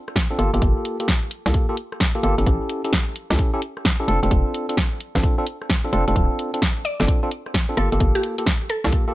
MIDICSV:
0, 0, Header, 1, 5, 480
1, 0, Start_track
1, 0, Tempo, 461538
1, 644, Time_signature, 4, 2, 24, 8
1, 9506, End_track
2, 0, Start_track
2, 0, Title_t, "Synth pluck"
2, 0, Program_c, 0, 84
2, 7122, Note_on_c, 0, 74, 91
2, 7223, Note_off_c, 0, 74, 0
2, 7277, Note_on_c, 0, 74, 77
2, 7332, Note_off_c, 0, 74, 0
2, 8083, Note_on_c, 0, 69, 94
2, 8255, Note_off_c, 0, 69, 0
2, 8478, Note_on_c, 0, 67, 88
2, 8592, Note_off_c, 0, 67, 0
2, 9045, Note_on_c, 0, 69, 91
2, 9144, Note_off_c, 0, 69, 0
2, 9199, Note_on_c, 0, 69, 80
2, 9253, Note_off_c, 0, 69, 0
2, 9506, End_track
3, 0, Start_track
3, 0, Title_t, "Tine electric piano"
3, 0, Program_c, 1, 4
3, 319, Note_on_c, 1, 60, 84
3, 319, Note_on_c, 1, 62, 75
3, 319, Note_on_c, 1, 65, 74
3, 319, Note_on_c, 1, 69, 91
3, 383, Note_off_c, 1, 60, 0
3, 383, Note_off_c, 1, 62, 0
3, 383, Note_off_c, 1, 65, 0
3, 383, Note_off_c, 1, 69, 0
3, 404, Note_on_c, 1, 58, 89
3, 404, Note_on_c, 1, 65, 89
3, 404, Note_on_c, 1, 67, 85
3, 404, Note_on_c, 1, 69, 100
3, 518, Note_off_c, 1, 58, 0
3, 518, Note_off_c, 1, 65, 0
3, 518, Note_off_c, 1, 67, 0
3, 519, Note_off_c, 1, 69, 0
3, 559, Note_on_c, 1, 65, 74
3, 559, Note_on_c, 1, 67, 75
3, 559, Note_on_c, 1, 69, 89
3, 560, Note_on_c, 1, 58, 80
3, 1002, Note_off_c, 1, 58, 0
3, 1002, Note_off_c, 1, 65, 0
3, 1002, Note_off_c, 1, 67, 0
3, 1002, Note_off_c, 1, 69, 0
3, 1039, Note_on_c, 1, 67, 73
3, 1040, Note_on_c, 1, 58, 75
3, 1040, Note_on_c, 1, 65, 70
3, 1040, Note_on_c, 1, 69, 81
3, 1101, Note_off_c, 1, 67, 0
3, 1102, Note_off_c, 1, 58, 0
3, 1102, Note_off_c, 1, 65, 0
3, 1102, Note_off_c, 1, 69, 0
3, 1519, Note_on_c, 1, 58, 84
3, 1519, Note_on_c, 1, 65, 71
3, 1519, Note_on_c, 1, 67, 73
3, 1519, Note_on_c, 1, 69, 90
3, 1722, Note_off_c, 1, 58, 0
3, 1722, Note_off_c, 1, 65, 0
3, 1722, Note_off_c, 1, 67, 0
3, 1722, Note_off_c, 1, 69, 0
3, 1758, Note_on_c, 1, 58, 91
3, 1758, Note_on_c, 1, 67, 83
3, 1758, Note_on_c, 1, 69, 95
3, 1759, Note_on_c, 1, 65, 82
3, 1821, Note_off_c, 1, 58, 0
3, 1821, Note_off_c, 1, 65, 0
3, 1821, Note_off_c, 1, 67, 0
3, 1821, Note_off_c, 1, 69, 0
3, 2237, Note_on_c, 1, 58, 86
3, 2238, Note_on_c, 1, 65, 78
3, 2238, Note_on_c, 1, 67, 80
3, 2238, Note_on_c, 1, 69, 97
3, 2302, Note_off_c, 1, 58, 0
3, 2303, Note_off_c, 1, 65, 0
3, 2303, Note_off_c, 1, 67, 0
3, 2303, Note_off_c, 1, 69, 0
3, 2322, Note_on_c, 1, 58, 93
3, 2322, Note_on_c, 1, 65, 83
3, 2322, Note_on_c, 1, 67, 87
3, 2323, Note_on_c, 1, 69, 104
3, 2438, Note_off_c, 1, 58, 0
3, 2438, Note_off_c, 1, 65, 0
3, 2438, Note_off_c, 1, 67, 0
3, 2438, Note_off_c, 1, 69, 0
3, 2477, Note_on_c, 1, 69, 94
3, 2478, Note_on_c, 1, 61, 78
3, 2478, Note_on_c, 1, 64, 74
3, 2478, Note_on_c, 1, 67, 73
3, 2921, Note_off_c, 1, 61, 0
3, 2921, Note_off_c, 1, 64, 0
3, 2921, Note_off_c, 1, 67, 0
3, 2921, Note_off_c, 1, 69, 0
3, 2958, Note_on_c, 1, 61, 73
3, 2959, Note_on_c, 1, 64, 69
3, 2959, Note_on_c, 1, 69, 85
3, 2960, Note_on_c, 1, 67, 69
3, 3021, Note_off_c, 1, 61, 0
3, 3021, Note_off_c, 1, 64, 0
3, 3022, Note_off_c, 1, 67, 0
3, 3022, Note_off_c, 1, 69, 0
3, 3437, Note_on_c, 1, 61, 83
3, 3437, Note_on_c, 1, 64, 77
3, 3437, Note_on_c, 1, 67, 75
3, 3437, Note_on_c, 1, 69, 92
3, 3641, Note_off_c, 1, 61, 0
3, 3641, Note_off_c, 1, 64, 0
3, 3641, Note_off_c, 1, 67, 0
3, 3641, Note_off_c, 1, 69, 0
3, 3677, Note_on_c, 1, 61, 89
3, 3677, Note_on_c, 1, 67, 84
3, 3677, Note_on_c, 1, 69, 98
3, 3678, Note_on_c, 1, 64, 84
3, 3740, Note_off_c, 1, 61, 0
3, 3740, Note_off_c, 1, 69, 0
3, 3741, Note_off_c, 1, 64, 0
3, 3741, Note_off_c, 1, 67, 0
3, 4158, Note_on_c, 1, 67, 81
3, 4159, Note_on_c, 1, 61, 89
3, 4159, Note_on_c, 1, 64, 80
3, 4159, Note_on_c, 1, 69, 100
3, 4223, Note_off_c, 1, 61, 0
3, 4223, Note_off_c, 1, 64, 0
3, 4223, Note_off_c, 1, 67, 0
3, 4223, Note_off_c, 1, 69, 0
3, 4243, Note_on_c, 1, 60, 91
3, 4243, Note_on_c, 1, 62, 89
3, 4243, Note_on_c, 1, 65, 83
3, 4243, Note_on_c, 1, 69, 102
3, 4358, Note_off_c, 1, 60, 0
3, 4358, Note_off_c, 1, 62, 0
3, 4358, Note_off_c, 1, 65, 0
3, 4358, Note_off_c, 1, 69, 0
3, 4398, Note_on_c, 1, 65, 75
3, 4399, Note_on_c, 1, 60, 81
3, 4399, Note_on_c, 1, 62, 75
3, 4399, Note_on_c, 1, 69, 91
3, 4842, Note_off_c, 1, 60, 0
3, 4842, Note_off_c, 1, 62, 0
3, 4842, Note_off_c, 1, 65, 0
3, 4842, Note_off_c, 1, 69, 0
3, 4878, Note_on_c, 1, 60, 76
3, 4878, Note_on_c, 1, 62, 73
3, 4878, Note_on_c, 1, 65, 66
3, 4879, Note_on_c, 1, 69, 86
3, 4941, Note_off_c, 1, 60, 0
3, 4941, Note_off_c, 1, 62, 0
3, 4941, Note_off_c, 1, 65, 0
3, 4941, Note_off_c, 1, 69, 0
3, 5358, Note_on_c, 1, 60, 81
3, 5358, Note_on_c, 1, 65, 76
3, 5358, Note_on_c, 1, 69, 91
3, 5359, Note_on_c, 1, 62, 75
3, 5561, Note_off_c, 1, 60, 0
3, 5561, Note_off_c, 1, 65, 0
3, 5562, Note_off_c, 1, 62, 0
3, 5562, Note_off_c, 1, 69, 0
3, 5597, Note_on_c, 1, 60, 87
3, 5597, Note_on_c, 1, 62, 80
3, 5597, Note_on_c, 1, 65, 83
3, 5598, Note_on_c, 1, 69, 99
3, 5661, Note_off_c, 1, 60, 0
3, 5661, Note_off_c, 1, 62, 0
3, 5661, Note_off_c, 1, 65, 0
3, 5661, Note_off_c, 1, 69, 0
3, 6078, Note_on_c, 1, 62, 82
3, 6079, Note_on_c, 1, 65, 78
3, 6079, Note_on_c, 1, 69, 94
3, 6080, Note_on_c, 1, 60, 83
3, 6143, Note_off_c, 1, 62, 0
3, 6143, Note_off_c, 1, 65, 0
3, 6143, Note_off_c, 1, 69, 0
3, 6144, Note_off_c, 1, 60, 0
3, 6163, Note_on_c, 1, 60, 92
3, 6163, Note_on_c, 1, 69, 101
3, 6164, Note_on_c, 1, 62, 88
3, 6164, Note_on_c, 1, 65, 87
3, 6278, Note_off_c, 1, 60, 0
3, 6278, Note_off_c, 1, 62, 0
3, 6278, Note_off_c, 1, 69, 0
3, 6279, Note_off_c, 1, 65, 0
3, 6319, Note_on_c, 1, 60, 82
3, 6319, Note_on_c, 1, 62, 75
3, 6319, Note_on_c, 1, 65, 74
3, 6319, Note_on_c, 1, 69, 88
3, 6762, Note_off_c, 1, 60, 0
3, 6762, Note_off_c, 1, 62, 0
3, 6762, Note_off_c, 1, 65, 0
3, 6762, Note_off_c, 1, 69, 0
3, 6800, Note_on_c, 1, 60, 78
3, 6800, Note_on_c, 1, 62, 72
3, 6801, Note_on_c, 1, 65, 69
3, 6801, Note_on_c, 1, 69, 82
3, 6862, Note_off_c, 1, 60, 0
3, 6862, Note_off_c, 1, 62, 0
3, 6862, Note_off_c, 1, 65, 0
3, 6862, Note_off_c, 1, 69, 0
3, 7278, Note_on_c, 1, 60, 84
3, 7279, Note_on_c, 1, 62, 72
3, 7279, Note_on_c, 1, 65, 75
3, 7279, Note_on_c, 1, 69, 87
3, 7482, Note_off_c, 1, 60, 0
3, 7482, Note_off_c, 1, 62, 0
3, 7482, Note_off_c, 1, 65, 0
3, 7482, Note_off_c, 1, 69, 0
3, 7519, Note_on_c, 1, 60, 95
3, 7519, Note_on_c, 1, 62, 82
3, 7519, Note_on_c, 1, 65, 85
3, 7519, Note_on_c, 1, 69, 97
3, 7581, Note_off_c, 1, 60, 0
3, 7581, Note_off_c, 1, 62, 0
3, 7581, Note_off_c, 1, 65, 0
3, 7581, Note_off_c, 1, 69, 0
3, 7998, Note_on_c, 1, 65, 75
3, 7999, Note_on_c, 1, 60, 87
3, 7999, Note_on_c, 1, 62, 78
3, 7999, Note_on_c, 1, 69, 95
3, 8063, Note_off_c, 1, 60, 0
3, 8063, Note_off_c, 1, 62, 0
3, 8063, Note_off_c, 1, 65, 0
3, 8063, Note_off_c, 1, 69, 0
3, 8083, Note_on_c, 1, 65, 90
3, 8083, Note_on_c, 1, 67, 83
3, 8084, Note_on_c, 1, 58, 96
3, 8084, Note_on_c, 1, 69, 100
3, 8198, Note_off_c, 1, 58, 0
3, 8198, Note_off_c, 1, 65, 0
3, 8198, Note_off_c, 1, 67, 0
3, 8198, Note_off_c, 1, 69, 0
3, 8240, Note_on_c, 1, 58, 83
3, 8240, Note_on_c, 1, 65, 75
3, 8240, Note_on_c, 1, 67, 74
3, 8240, Note_on_c, 1, 69, 87
3, 8682, Note_off_c, 1, 58, 0
3, 8682, Note_off_c, 1, 65, 0
3, 8682, Note_off_c, 1, 67, 0
3, 8682, Note_off_c, 1, 69, 0
3, 8719, Note_on_c, 1, 58, 73
3, 8719, Note_on_c, 1, 65, 70
3, 8720, Note_on_c, 1, 67, 70
3, 8720, Note_on_c, 1, 69, 81
3, 8781, Note_off_c, 1, 58, 0
3, 8781, Note_off_c, 1, 65, 0
3, 8782, Note_off_c, 1, 67, 0
3, 8782, Note_off_c, 1, 69, 0
3, 9199, Note_on_c, 1, 58, 87
3, 9199, Note_on_c, 1, 65, 76
3, 9199, Note_on_c, 1, 67, 74
3, 9199, Note_on_c, 1, 69, 95
3, 9402, Note_off_c, 1, 58, 0
3, 9402, Note_off_c, 1, 65, 0
3, 9402, Note_off_c, 1, 67, 0
3, 9402, Note_off_c, 1, 69, 0
3, 9440, Note_on_c, 1, 58, 95
3, 9440, Note_on_c, 1, 65, 81
3, 9440, Note_on_c, 1, 67, 85
3, 9440, Note_on_c, 1, 69, 98
3, 9502, Note_off_c, 1, 58, 0
3, 9502, Note_off_c, 1, 65, 0
3, 9502, Note_off_c, 1, 67, 0
3, 9502, Note_off_c, 1, 69, 0
3, 9506, End_track
4, 0, Start_track
4, 0, Title_t, "FM bass"
4, 0, Program_c, 2, 39
4, 402, Note_on_c, 2, 31, 85
4, 527, Note_off_c, 2, 31, 0
4, 558, Note_on_c, 2, 31, 88
4, 626, Note_off_c, 2, 31, 0
4, 643, Note_on_c, 2, 31, 99
4, 768, Note_off_c, 2, 31, 0
4, 1517, Note_on_c, 2, 36, 101
4, 1586, Note_off_c, 2, 36, 0
4, 2323, Note_on_c, 2, 31, 87
4, 2448, Note_off_c, 2, 31, 0
4, 2478, Note_on_c, 2, 31, 84
4, 2546, Note_off_c, 2, 31, 0
4, 2564, Note_on_c, 2, 33, 99
4, 2688, Note_off_c, 2, 33, 0
4, 3437, Note_on_c, 2, 37, 102
4, 3506, Note_off_c, 2, 37, 0
4, 4243, Note_on_c, 2, 29, 84
4, 4368, Note_off_c, 2, 29, 0
4, 4397, Note_on_c, 2, 29, 87
4, 4466, Note_off_c, 2, 29, 0
4, 4484, Note_on_c, 2, 29, 96
4, 4608, Note_off_c, 2, 29, 0
4, 5360, Note_on_c, 2, 33, 100
4, 5427, Note_off_c, 2, 33, 0
4, 6165, Note_on_c, 2, 29, 88
4, 6289, Note_off_c, 2, 29, 0
4, 6321, Note_on_c, 2, 29, 84
4, 6388, Note_off_c, 2, 29, 0
4, 6404, Note_on_c, 2, 26, 97
4, 6529, Note_off_c, 2, 26, 0
4, 7279, Note_on_c, 2, 31, 97
4, 7347, Note_off_c, 2, 31, 0
4, 8085, Note_on_c, 2, 31, 84
4, 8209, Note_off_c, 2, 31, 0
4, 8241, Note_on_c, 2, 31, 84
4, 8307, Note_off_c, 2, 31, 0
4, 8323, Note_on_c, 2, 31, 96
4, 8448, Note_off_c, 2, 31, 0
4, 9198, Note_on_c, 2, 36, 103
4, 9266, Note_off_c, 2, 36, 0
4, 9506, End_track
5, 0, Start_track
5, 0, Title_t, "Drums"
5, 82, Note_on_c, 9, 37, 33
5, 163, Note_on_c, 9, 36, 116
5, 166, Note_on_c, 9, 38, 124
5, 166, Note_on_c, 9, 42, 68
5, 186, Note_off_c, 9, 37, 0
5, 267, Note_off_c, 9, 36, 0
5, 270, Note_off_c, 9, 38, 0
5, 270, Note_off_c, 9, 42, 0
5, 404, Note_on_c, 9, 42, 90
5, 508, Note_off_c, 9, 42, 0
5, 561, Note_on_c, 9, 42, 35
5, 644, Note_off_c, 9, 42, 0
5, 644, Note_on_c, 9, 36, 116
5, 644, Note_on_c, 9, 42, 62
5, 748, Note_off_c, 9, 36, 0
5, 748, Note_off_c, 9, 42, 0
5, 885, Note_on_c, 9, 42, 109
5, 989, Note_off_c, 9, 42, 0
5, 1039, Note_on_c, 9, 42, 60
5, 1123, Note_off_c, 9, 42, 0
5, 1123, Note_on_c, 9, 38, 120
5, 1123, Note_on_c, 9, 42, 62
5, 1124, Note_on_c, 9, 36, 118
5, 1227, Note_off_c, 9, 38, 0
5, 1227, Note_off_c, 9, 42, 0
5, 1228, Note_off_c, 9, 36, 0
5, 1362, Note_on_c, 9, 42, 94
5, 1466, Note_off_c, 9, 42, 0
5, 1519, Note_on_c, 9, 38, 61
5, 1519, Note_on_c, 9, 42, 34
5, 1602, Note_off_c, 9, 42, 0
5, 1602, Note_on_c, 9, 42, 59
5, 1604, Note_on_c, 9, 36, 121
5, 1623, Note_off_c, 9, 38, 0
5, 1706, Note_off_c, 9, 42, 0
5, 1708, Note_off_c, 9, 36, 0
5, 1842, Note_on_c, 9, 42, 107
5, 1946, Note_off_c, 9, 42, 0
5, 2000, Note_on_c, 9, 37, 33
5, 2083, Note_on_c, 9, 38, 126
5, 2083, Note_on_c, 9, 42, 65
5, 2084, Note_on_c, 9, 36, 121
5, 2104, Note_off_c, 9, 37, 0
5, 2187, Note_off_c, 9, 38, 0
5, 2187, Note_off_c, 9, 42, 0
5, 2188, Note_off_c, 9, 36, 0
5, 2323, Note_on_c, 9, 42, 92
5, 2427, Note_off_c, 9, 42, 0
5, 2479, Note_on_c, 9, 42, 33
5, 2563, Note_on_c, 9, 36, 117
5, 2564, Note_off_c, 9, 42, 0
5, 2564, Note_on_c, 9, 42, 61
5, 2667, Note_off_c, 9, 36, 0
5, 2668, Note_off_c, 9, 42, 0
5, 2802, Note_on_c, 9, 42, 105
5, 2906, Note_off_c, 9, 42, 0
5, 2958, Note_on_c, 9, 42, 62
5, 3043, Note_on_c, 9, 36, 122
5, 3044, Note_off_c, 9, 42, 0
5, 3044, Note_on_c, 9, 38, 124
5, 3044, Note_on_c, 9, 42, 64
5, 3147, Note_off_c, 9, 36, 0
5, 3148, Note_off_c, 9, 38, 0
5, 3148, Note_off_c, 9, 42, 0
5, 3283, Note_on_c, 9, 42, 93
5, 3387, Note_off_c, 9, 42, 0
5, 3439, Note_on_c, 9, 38, 64
5, 3523, Note_on_c, 9, 36, 122
5, 3524, Note_on_c, 9, 42, 61
5, 3543, Note_off_c, 9, 38, 0
5, 3627, Note_off_c, 9, 36, 0
5, 3628, Note_off_c, 9, 42, 0
5, 3764, Note_on_c, 9, 42, 105
5, 3868, Note_off_c, 9, 42, 0
5, 3920, Note_on_c, 9, 37, 31
5, 4003, Note_on_c, 9, 36, 121
5, 4004, Note_on_c, 9, 38, 123
5, 4004, Note_on_c, 9, 42, 64
5, 4024, Note_off_c, 9, 37, 0
5, 4107, Note_off_c, 9, 36, 0
5, 4108, Note_off_c, 9, 38, 0
5, 4108, Note_off_c, 9, 42, 0
5, 4244, Note_on_c, 9, 42, 90
5, 4348, Note_off_c, 9, 42, 0
5, 4401, Note_on_c, 9, 42, 33
5, 4484, Note_off_c, 9, 42, 0
5, 4484, Note_on_c, 9, 36, 124
5, 4484, Note_on_c, 9, 42, 66
5, 4588, Note_off_c, 9, 36, 0
5, 4588, Note_off_c, 9, 42, 0
5, 4726, Note_on_c, 9, 42, 101
5, 4830, Note_off_c, 9, 42, 0
5, 4881, Note_on_c, 9, 42, 58
5, 4964, Note_off_c, 9, 42, 0
5, 4964, Note_on_c, 9, 36, 123
5, 4964, Note_on_c, 9, 38, 119
5, 4964, Note_on_c, 9, 42, 62
5, 5068, Note_off_c, 9, 36, 0
5, 5068, Note_off_c, 9, 38, 0
5, 5068, Note_off_c, 9, 42, 0
5, 5205, Note_on_c, 9, 42, 86
5, 5309, Note_off_c, 9, 42, 0
5, 5359, Note_on_c, 9, 38, 61
5, 5359, Note_on_c, 9, 42, 33
5, 5360, Note_on_c, 9, 36, 62
5, 5443, Note_off_c, 9, 42, 0
5, 5443, Note_on_c, 9, 42, 58
5, 5445, Note_off_c, 9, 36, 0
5, 5445, Note_on_c, 9, 36, 125
5, 5463, Note_off_c, 9, 38, 0
5, 5547, Note_off_c, 9, 42, 0
5, 5549, Note_off_c, 9, 36, 0
5, 5684, Note_on_c, 9, 42, 106
5, 5788, Note_off_c, 9, 42, 0
5, 5840, Note_on_c, 9, 37, 31
5, 5924, Note_on_c, 9, 36, 120
5, 5924, Note_on_c, 9, 38, 127
5, 5924, Note_on_c, 9, 42, 64
5, 5944, Note_off_c, 9, 37, 0
5, 6028, Note_off_c, 9, 36, 0
5, 6028, Note_off_c, 9, 38, 0
5, 6028, Note_off_c, 9, 42, 0
5, 6165, Note_on_c, 9, 42, 87
5, 6269, Note_off_c, 9, 42, 0
5, 6321, Note_on_c, 9, 42, 35
5, 6404, Note_on_c, 9, 36, 118
5, 6406, Note_off_c, 9, 42, 0
5, 6406, Note_on_c, 9, 42, 65
5, 6508, Note_off_c, 9, 36, 0
5, 6510, Note_off_c, 9, 42, 0
5, 6646, Note_on_c, 9, 42, 102
5, 6750, Note_off_c, 9, 42, 0
5, 6802, Note_on_c, 9, 42, 67
5, 6884, Note_on_c, 9, 36, 112
5, 6885, Note_off_c, 9, 42, 0
5, 6885, Note_on_c, 9, 38, 123
5, 6885, Note_on_c, 9, 42, 64
5, 6988, Note_off_c, 9, 36, 0
5, 6989, Note_off_c, 9, 38, 0
5, 6989, Note_off_c, 9, 42, 0
5, 7125, Note_on_c, 9, 42, 85
5, 7229, Note_off_c, 9, 42, 0
5, 7281, Note_on_c, 9, 38, 60
5, 7364, Note_on_c, 9, 36, 125
5, 7368, Note_on_c, 9, 42, 66
5, 7385, Note_off_c, 9, 38, 0
5, 7468, Note_off_c, 9, 36, 0
5, 7472, Note_off_c, 9, 42, 0
5, 7606, Note_on_c, 9, 42, 102
5, 7710, Note_off_c, 9, 42, 0
5, 7762, Note_on_c, 9, 37, 29
5, 7844, Note_on_c, 9, 36, 112
5, 7846, Note_on_c, 9, 38, 121
5, 7846, Note_on_c, 9, 42, 70
5, 7866, Note_off_c, 9, 37, 0
5, 7948, Note_off_c, 9, 36, 0
5, 7950, Note_off_c, 9, 38, 0
5, 7950, Note_off_c, 9, 42, 0
5, 8085, Note_on_c, 9, 42, 92
5, 8189, Note_off_c, 9, 42, 0
5, 8240, Note_on_c, 9, 42, 35
5, 8324, Note_off_c, 9, 42, 0
5, 8324, Note_on_c, 9, 36, 110
5, 8324, Note_on_c, 9, 42, 71
5, 8428, Note_off_c, 9, 36, 0
5, 8428, Note_off_c, 9, 42, 0
5, 8564, Note_on_c, 9, 42, 103
5, 8668, Note_off_c, 9, 42, 0
5, 8718, Note_on_c, 9, 42, 66
5, 8804, Note_off_c, 9, 42, 0
5, 8804, Note_on_c, 9, 36, 118
5, 8804, Note_on_c, 9, 38, 113
5, 8804, Note_on_c, 9, 42, 68
5, 8908, Note_off_c, 9, 36, 0
5, 8908, Note_off_c, 9, 38, 0
5, 8908, Note_off_c, 9, 42, 0
5, 9042, Note_on_c, 9, 42, 91
5, 9146, Note_off_c, 9, 42, 0
5, 9197, Note_on_c, 9, 38, 60
5, 9197, Note_on_c, 9, 42, 37
5, 9281, Note_off_c, 9, 42, 0
5, 9281, Note_on_c, 9, 42, 68
5, 9284, Note_on_c, 9, 36, 117
5, 9301, Note_off_c, 9, 38, 0
5, 9385, Note_off_c, 9, 42, 0
5, 9388, Note_off_c, 9, 36, 0
5, 9506, End_track
0, 0, End_of_file